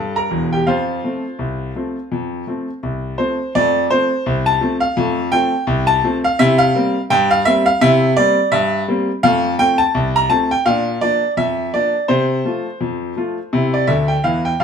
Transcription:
Already playing: G2 A4 A5
0.16 A#4 A#5
0.31 E1 E2
0.53 G4 G5
0.67 F2 F4 C5 F5
1.04 F3 A3 C4
1.39 C2
1.76 F3 A3 C4
2.12 F2
2.47 F3 A3 C4
2.83 C2
3.18 F3 A3 C4 C5
3.55 F2 A3 D5
3.90 F3 A3 C4 C5
4.26 C2
4.46 A5
4.61 F3 A3 C4
4.80 F5
4.97 F2 A3
5.32 F3 A3 C4 G5
5.67 C2
5.87 A5
6.04 F3 A3 C4
6.24 F5
6.39 C3 E4 E5
6.58 F5
6.74 G3 A#3 C4
7.10 G2 G5
7.31 F5
7.45 G3 A#3 C4 E5
7.66 F5
7.81 C3 E4 E5
8.16 G3 A#3 C4 D5
8.52 G2 E5
8.88 G3 A#3 C4
9.23 F2 A3 F5
9.59 F3 A3 C4 G5
9.78 A5
9.95 C2
10.16 A#5
10.30 F3 A3 C4 A5
10.51 G5
10.66 A#2 D4 F5
11.01 F3 A#3 D4 D5
11.37 F2 E5
11.74 F3 A#3 D4 D5
12.08 C3 C5
12.45 F3 A3 F4
12.81 F2
13.16 F3 A3 F4
13.53 C3 E4
13.74 D5
13.87 D2 D3 E5
14.08 G5
14.24 E2 E3 F5
14.45 G5
14.60 G2 G3 F5

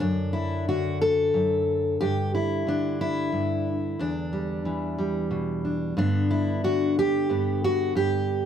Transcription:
Already playing: D3
0.00 F#2 D4
0.33 E4
0.69 D3 F#4
1.02 A4
1.34 F#2
2.01 G2 G4
2.35 E4
2.67 D3 D4
3.01 E4
3.32 G2
3.99 E2 D4
4.33 G3
4.65 E3
4.98 G3
5.31 B2
5.65 D4
5.97 G2 D3 B3 D4
6.31 E4
6.64 D3 F#4
6.99 G4
7.29 G2 B3
7.64 F#4
7.95 G2 G4

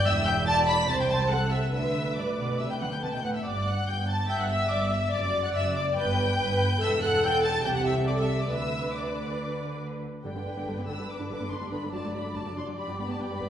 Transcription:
0.06 E1 E2 E5 E6
0.26 G5 G6
0.47 D5 A5 A6
0.67 B5 B6
0.89 C2 C3 C5 A5 A6
1.01 G5 G6
1.10 A5 A6
1.30 A4 F#5 F#6
1.52 E5 E6
1.73 D2 D3 B4 E5 E6
2.17 G2 D5 D6
2.38 B2
2.60 C3 E5 E6
2.70 G5 G6
2.81 D3 F#5 F#6
2.92 G5 G6
3.02 C3 A5 A6
3.13 B2 G5 G6
3.23 A2 F#5 F#6
3.34 E5 E6
3.45 G1 G2 D5 D6
3.67 F#5 F#6
3.87 G1 G2 G5 G6
4.09 A5 A6
4.29 G1 G2 E5 G5 G6
4.39 F#5 F#6
4.50 E5 E6
4.70 G1 G2 D5 D6
4.91 E5 E6
5.12 F#1 F#2 D5 D6
5.23 D5 D6
5.44 F#5 F#6
5.54 F#1 F#2 E5 E6
5.76 D5 D6
5.97 G1 G2 B4 G5 G6
6.39 G1 G2 B4
6.81 E1 E2 A4 E5 E6
7.02 F#5 F#6
7.23 G5 G6
7.43 A5 A6
7.64 C2 C3 G4 G5 G6
7.75 F#5 F#6
7.85 E5 E6
8.07 A4 D5 D6
8.18 E5 E6
8.40 D5 D6
8.50 D2 D3 B4 E5 E6
8.94 D5 D6
10.24 G1 G2 D3 G3 D4 B4 G5
10.35 G2 D3 B3
10.45 G1 G2 D3 D4
10.56 G2 D3 B3
10.66 G1 G2 D3 G3
10.77 G2 D3 B3
10.87 G1 G2 D3 D4 E6
10.98 G2 D3 G3
11.08 D6
11.19 G2 D3 D4
11.30 G1 G2 D3 G3 D6
11.41 G2 D3 B3
11.51 G1 G2 D3 D4 C6
11.62 G2 D3 G3
11.71 G1 G2 D3 B3 B5
11.83 G2 D3 D4
11.93 F#1 F#2 F#3 D5 A5
12.04 F#2 F#3 A3
12.14 F#1 F#2 F#3 D4 B5
12.25 F#2 F#3 A3
12.35 F#1 F#2 F#3 A5
12.46 F#2 F#3 A3
12.56 F#1 F#2 F#3 D4 C6
12.67 F#2 F#3
12.77 G4 B5
12.88 G2 B3 D4
12.98 G1 G2 G3 B3 B5
13.09 G2 B3 A5
13.19 G1 G2 B3 D4 G5
13.30 G2 G3 B3 B5
13.40 G1 G2 B3

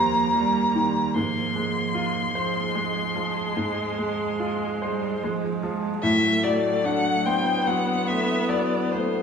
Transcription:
Already playing: D#2 F3 G3 A#3 G4 C5 A#5
0.35 G3
0.74 D#3 G3
1.14 G#2 F3 C6
1.56 G#3
1.95 F4
2.34 F3 G#3 C5
2.75 G#3
3.16 F3
3.55 G#2 G#3
3.98 G#3
4.40 F4
4.82 G3 C5
5.22 F3 G#3
5.62 F3 G#3
6.03 A2 F#3 A3 E5
6.44 F#3 D5
6.84 D4 F#5
7.25 B3 C5 G5
7.67 F#3 F#5
8.07 A3 E5
8.48 F#3 D5
8.92 A3 C5

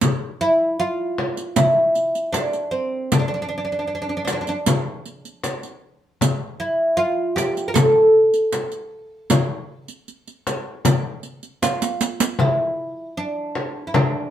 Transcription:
0.01 riq, frame drum
0.41 E4
0.80 F4
1.18 frame drum
1.37 riq
1.56 E4, riq, frame drum
1.95 riq
2.15 riq
2.33 D4, riq, frame drum
2.53 riq
2.71 C4
3.12 D4, riq, frame drum
3.19 D4
3.28 D4
3.34 D4
3.42 D4
3.49 D4
3.58 D4
3.65 D4
3.72 D4
3.79 D4
3.87 D4
3.95 D4
4.02 D4
4.09 D4
4.17 D4
4.25 D4, riq, frame drum
4.33 D4
4.41 D4
4.47 D4, riq
4.66 riq, frame drum
5.05 riq
5.25 riq
5.44 riq, frame drum
5.63 riq
6.21 riq, frame drum
6.60 E4
6.97 F4
7.36 G4, riq, frame drum
7.57 riq
7.68 A#4
7.74 A4, riq, frame drum
8.34 riq
8.52 riq, frame drum
8.72 riq
9.30 riq, frame drum
9.88 riq
10.08 riq
10.28 riq
10.47 riq, frame drum
10.85 riq, frame drum
11.23 riq
11.43 riq
11.62 F4, riq, frame drum
11.82 riq
12.01 riq
12.20 riq
12.39 E4, frame drum
13.17 D4
13.55 frame drum
13.87 E4
13.94 D4, frame drum

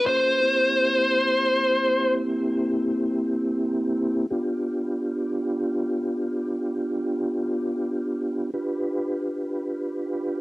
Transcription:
0.05 A#3 C#4 F4 G#4 C5
0.42 A#3 C4 E4 G4
4.30 B3 D4 F4 G4
8.53 D4 F4 G4 B4

